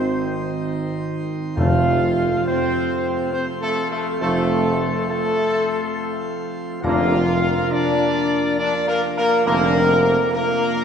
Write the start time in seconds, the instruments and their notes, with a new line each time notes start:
Already playing: tuba G#1, trombone section D#3 C4, pipe organ D#3 C4 D#4 C5, french horn section C4, trumpet section C5
1.56 tuba F1, timpani F2, trombone section F3 A3, pipe organ F3 A3 C4 C5, french horn section F4, trumpet section F5
2.45 french horn section C4, trumpet section C5
3.32 french horn section C4, trumpet section C5
3.62 french horn section A3, trumpet section A4
3.90 french horn section A3, trumpet section A4
4.20 tuba F1, trombone section F3 A3, french horn section A3, trumpet section A4
5.08 french horn section A3, trumpet section A4
6.83 tuba F1, timpani F2, trombone section D3 A#3, pipe organ F3 A#3 D4 A#4, french horn section F4, trumpet section F5
7.71 french horn section D4, trumpet section D5
8.59 french horn section D4, trumpet section D5
8.87 french horn section A#3, trumpet section A#4
9.16 french horn section A#3, trumpet section A#4
9.45 tuba F1, trombone section D3 A#3, french horn section A#3, trumpet section A#4
10.32 french horn section A#3, trumpet section A#4